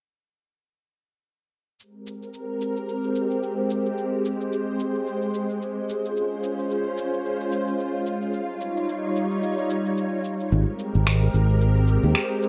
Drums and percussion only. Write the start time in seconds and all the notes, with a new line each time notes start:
1.80 shaker
2.07 shaker
2.23 shaker
2.34 shaker
2.61 shaker
2.77 shaker
2.89 shaker
3.03 shaker
3.15 shaker
3.31 shaker
3.43 shaker
3.70 shaker
3.86 shaker
3.98 shaker
4.25 shaker
4.40 shaker
4.52 shaker
4.79 shaker
4.95 shaker
5.07 shaker
5.22 shaker
5.34 shaker
5.50 shaker
5.62 shaker
5.89 shaker
6.05 shaker
6.17 shaker
6.44 shaker
6.59 shaker
6.71 shaker
6.98 shaker
7.14 shaker
7.25 shaker
7.41 shaker
7.52 shaker
7.68 shaker
7.80 shaker
8.07 shaker
8.22 shaker
8.34 shaker
8.61 shaker
8.77 shaker
8.89 shaker
9.16 shaker
9.31 shaker
9.43 shaker
9.59 shaker
9.70 shaker
9.86 shaker
9.98 shaker
10.25 shaker
10.40 shaker
10.52 shaker
10.79 shaker
10.95 shaker
11.07 finger snap, shaker
11.34 shaker
11.50 shaker
11.61 shaker
11.77 shaker
11.88 shaker
12.04 shaker
12.15 finger snap, shaker
12.43 shaker